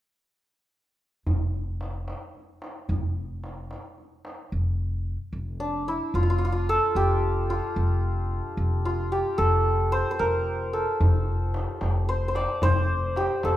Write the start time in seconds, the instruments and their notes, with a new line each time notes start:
1.26 upright bass F1, tombak dum
1.54 tombak ka
1.81 tombak tek
2.08 tombak tek
2.35 tombak ka
2.62 tombak tek
2.89 upright bass F1, tombak dum
3.16 tombak ka
3.44 tombak tek
3.71 tombak tek
3.98 tombak ka
4.25 tombak tek
4.52 upright bass F1
5.33 upright bass F1
5.60 santur D4
5.88 santur E4
6.14 upright bass F1, santur F4
6.23 santur F4
6.30 santur F4
6.38 santur F4
6.45 santur F4
6.52 santur F4
6.69 santur A4
6.95 upright bass F1, santur G4
7.50 santur F4
7.76 upright bass F1
8.57 upright bass F1
8.85 santur F4
9.12 santur G4
9.38 upright bass F1, santur A4
9.92 santur C5
10.11 santur C5
10.19 upright bass F1, santur A#4
10.73 santur A4
11.00 upright bass F1, tombak dum
11.54 tombak tek
11.81 upright bass F1, tombak tek
12.08 santur C5, tombak ka
12.22 tombak ka
12.28 santur C5
12.35 santur D5, tombak tek
12.62 upright bass F1, santur C5, tombak dum
13.16 santur G4, tombak tek
13.43 upright bass F1, santur A4, tombak tek